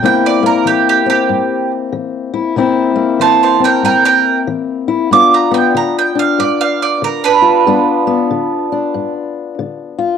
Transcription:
0.03 0.62 C3 medium
0.03 0.42 A#3 medium
0.03 1.06 C4 medium
0.03 2.32 E4 medium
0.03 0.25 G5 medium
0.26 0.46 D5 medium
0.43 2.55 A#3 medium
0.43 0.66 A#4 medium
0.65 1.25 E3 medium
0.65 0.87 G4 medium
0.89 1.09 G4 medium
1.06 2.54 C4 medium
1.06 1.71 G4 medium
1.29 1.88 G2 medium
1.93 2.52 E3 medium
2.34 2.57 E4 medium
2.56 3.15 C3 medium
2.56 2.94 A#3 soft
2.56 3.59 C4 medium
2.56 4.87 E4 medium
2.96 5.09 A#3 medium
3.20 3.79 E3 medium
3.20 3.41 C5 medium
3.20 3.42 A5 medium
3.43 3.62 C5 medium
3.43 3.63 A5 medium
3.60 5.09 C4 medium
3.64 3.83 A#4 medium
3.64 3.84 G5 medium
3.83 4.43 G2 medium
3.83 4.04 A#4 medium
3.83 4.05 G5 medium
4.05 4.37 A#4 medium
4.05 4.39 G5 medium
4.47 5.07 E3 medium
4.88 5.12 E4 medium
5.11 5.70 G2 medium
5.11 5.51 B3 medium
5.11 6.15 D4 medium
5.11 7.41 F4 medium
5.11 5.33 D6 medium
5.34 5.54 A#5 medium
5.51 7.64 B3 medium
5.51 5.75 G5 medium
5.74 6.34 D3 medium
5.74 5.97 A#5 medium
5.99 6.19 G5 medium
6.15 7.68 D4 soft
6.19 6.39 F5 medium
6.39 6.98 G2 medium
6.39 6.60 D5 medium
6.61 6.82 F5 medium
6.82 7.03 D5 medium
7.02 7.62 D3 medium
7.02 7.24 A#4 medium
7.24 9.12 D4 medium
7.24 9.13 B4 medium
7.42 7.64 F4 medium
7.67 8.26 G2 medium
7.67 8.06 B3 medium
7.67 8.72 D4 medium
7.67 9.97 F4 medium
8.07 10.18 B3 medium
8.31 8.90 D3 medium
8.72 10.18 D4 soft
8.94 9.54 G2 medium
9.59 10.18 D3 medium
9.98 10.18 F4 medium

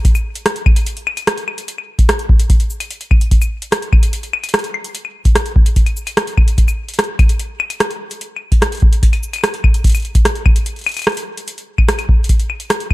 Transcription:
0.05 kick medium
0.05 closed hi-hat medium
0.15 cabasa medium
0.15 claves soft
0.35 closed hi-hat medium
0.46 cross-stick loud
0.46 closed hi-hat medium
0.56 closed hi-hat soft
0.66 kick loud
0.66 claves medium
0.76 closed hi-hat medium
0.86 closed hi-hat medium
0.97 closed hi-hat soft
1.07 claves medium
1.17 closed hi-hat medium
1.17 claves soft
1.27 cross-stick loud
1.27 closed hi-hat medium
1.38 closed hi-hat soft
1.48 claves medium
1.58 closed hi-hat medium
1.68 closed hi-hat medium
1.78 claves soft
1.99 kick medium
1.99 closed hi-hat medium
2.09 cross-stick loud
2.09 closed hi-hat medium
2.19 closed hi-hat soft
2.29 kick loud
2.40 closed hi-hat medium
2.50 kick medium
2.50 closed hi-hat medium
2.60 closed hi-hat soft
2.70 cabasa medium
2.80 closed hi-hat medium
2.80 claves soft
2.91 closed hi-hat medium
3.01 closed hi-hat soft
3.11 kick medium
3.11 claves medium
3.21 closed hi-hat medium
3.31 kick medium
3.31 closed hi-hat medium
3.42 cabasa medium
3.42 claves soft
3.62 closed hi-hat medium
3.72 cross-stick loud
3.72 closed hi-hat medium
3.82 closed hi-hat soft
3.93 kick loud
3.93 claves medium
4.03 closed hi-hat medium
4.13 closed hi-hat medium
4.23 closed hi-hat soft
4.33 claves medium
4.44 closed hi-hat soft
4.44 claves soft
4.49 closed hi-hat soft
4.54 cross-stick loud
4.54 closed hi-hat medium
4.59 closed hi-hat soft
4.64 closed hi-hat soft
4.74 claves soft
4.84 closed hi-hat medium
4.95 closed hi-hat medium
5.05 claves soft
5.25 kick medium
5.25 closed hi-hat medium
5.35 cross-stick loud
5.35 closed hi-hat medium
5.46 closed hi-hat soft
5.56 kick loud
5.66 closed hi-hat medium
5.76 kick medium
5.76 closed hi-hat medium
5.86 closed hi-hat soft
5.86 claves soft
5.97 cabasa medium
6.07 closed hi-hat medium
6.07 claves soft
6.17 cross-stick loud
6.17 closed hi-hat medium
6.27 closed hi-hat soft
6.37 kick medium
6.37 claves soft
6.48 closed hi-hat soft
6.58 kick medium
6.58 closed hi-hat medium
6.68 cabasa medium
6.68 claves soft
6.89 closed hi-hat soft
6.94 closed hi-hat soft
6.99 cross-stick loud
6.99 closed hi-hat medium
7.04 closed hi-hat soft
7.19 kick loud
7.19 closed hi-hat soft
7.19 claves medium
7.29 closed hi-hat medium
7.39 closed hi-hat medium
7.60 claves medium
7.70 closed hi-hat medium
7.70 claves soft
7.80 cross-stick loud
7.80 closed hi-hat medium
7.91 closed hi-hat soft
8.11 closed hi-hat soft
8.21 closed hi-hat medium
8.36 claves soft
8.52 kick medium
8.52 closed hi-hat medium
8.62 cross-stick loud
8.62 closed hi-hat medium
8.72 closed hi-hat soft
8.75 closed hi-hat soft
8.77 closed hi-hat soft
8.80 kick loud
8.80 closed hi-hat soft
8.93 closed hi-hat medium
9.03 kick medium
9.03 closed hi-hat medium
9.13 closed hi-hat soft
9.13 claves soft
9.23 cabasa medium
9.33 closed hi-hat medium
9.33 claves soft
9.36 claves soft
9.39 claves soft
9.41 cross-stick loud
9.41 closed hi-hat medium
9.41 claves soft
9.54 closed hi-hat soft
9.64 kick medium
9.64 claves medium
9.74 closed hi-hat soft
9.84 kick medium
9.84 closed hi-hat medium
9.87 closed hi-hat medium
9.90 closed hi-hat soft
9.92 closed hi-hat soft
9.95 closed hi-hat soft
9.95 cabasa medium
9.95 claves soft
9.97 closed hi-hat soft
10.00 closed hi-hat soft
10.02 closed hi-hat soft
10.05 closed hi-hat soft
10.15 kick medium
10.15 closed hi-hat medium
10.25 cross-stick loud
10.25 closed hi-hat medium
10.35 closed hi-hat soft
10.46 kick loud
10.46 claves medium
10.56 closed hi-hat medium
10.66 closed hi-hat medium
10.76 closed hi-hat soft
10.79 closed hi-hat soft
10.81 closed hi-hat soft
10.84 closed hi-hat soft
10.86 closed hi-hat soft
10.86 claves medium
10.89 closed hi-hat soft
10.92 closed hi-hat soft
10.94 closed hi-hat soft
10.97 closed hi-hat medium
10.97 claves soft
10.99 closed hi-hat soft
10.99 claves soft
11.02 closed hi-hat soft
11.02 claves soft
11.04 cross-stick loud
11.04 closed hi-hat soft
11.04 claves soft
11.09 closed hi-hat soft
11.12 closed hi-hat soft
11.15 closed hi-hat soft
11.15 claves soft
11.17 closed hi-hat medium
11.37 closed hi-hat medium
11.48 closed hi-hat medium
11.58 closed hi-hat soft
11.78 kick medium
11.78 claves medium
11.89 cross-stick loud
11.89 closed hi-hat medium
11.99 closed hi-hat soft
11.99 claves medium
12.09 kick medium
12.24 closed hi-hat medium
12.29 kick medium
12.29 closed hi-hat medium
12.40 closed hi-hat soft
12.50 claves soft
12.60 closed hi-hat soft
12.70 cross-stick loud
12.70 closed hi-hat medium
12.80 closed hi-hat soft
12.91 kick medium
12.91 claves medium

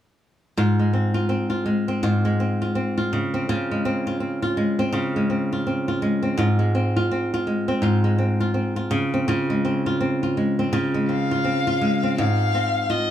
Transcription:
0.57 2.02 G#2 medium
0.57 1.14 F4 medium
0.79 1.65 G#3 soft
0.93 1.29 C4 soft
1.14 1.49 F4 medium
1.29 1.88 C4 soft
1.50 2.03 F4 soft
1.66 2.24 G#3 soft
1.88 2.40 C4 medium
2.03 3.20 G#2 medium
2.03 2.61 F4 medium
2.25 3.71 G#3 soft
2.40 2.75 C4 soft
2.62 2.97 F4 soft
2.75 3.33 C4 soft
2.98 3.49 F4 soft
3.13 3.48 C#3 medium
3.34 3.85 C4 soft
3.49 4.91 C#3 medium
3.49 4.06 F4 medium
3.71 4.57 G#3 soft
3.85 4.20 C4 soft
4.07 4.42 F4 soft
4.20 4.79 C4 soft
4.42 4.93 F4 soft
4.57 5.16 G#3 soft
4.79 5.29 C4 medium
4.92 6.46 C#3 medium
4.92 5.52 F4 medium
5.16 6.02 G#3 soft
5.30 5.66 C4 soft
5.52 5.88 F4 soft
5.67 6.22 C4 soft
5.88 6.38 F4 medium
6.02 6.59 G#3 medium
6.23 6.74 C4 soft
6.38 7.81 G#2 medium
6.38 6.96 F4 medium
6.59 7.46 G#3 soft
6.75 7.11 C4 soft
6.96 7.33 F4 medium
7.11 7.68 C4 soft
7.34 7.82 F4 medium
7.47 8.04 G#3 soft
7.68 8.18 C4 medium
7.82 8.99 G#2 medium
7.82 8.40 F4 medium
8.04 9.49 G#3 soft
8.18 8.54 C4 soft
8.40 8.76 F4 soft
8.54 9.13 C4 soft
8.76 9.28 F4 soft
8.91 9.27 C#3 medium
9.14 9.64 C4 soft
9.28 10.71 C#3 medium
9.28 9.86 F4 medium
9.50 10.37 G#3 soft
9.65 10.00 C4 soft
9.86 10.22 F4 medium
10.01 10.59 C4 soft
10.23 10.73 F4 soft
10.37 10.94 G#3 soft
10.59 11.08 C4 medium
10.73 12.26 C#3 medium
10.73 11.31 F4 medium
10.94 11.81 G#3 soft
11.09 11.44 C4 soft
11.09 12.13 F5 medium
11.31 11.67 F4 soft
11.44 12.03 C4 soft
11.67 12.89 F4 medium
11.81 13.11 G#3 medium
12.03 12.54 C4 soft
12.18 13.11 G#2 medium
12.18 12.92 F5 medium
12.54 13.11 C4 medium
12.90 13.11 F4 soft
12.90 13.11 D#5 medium

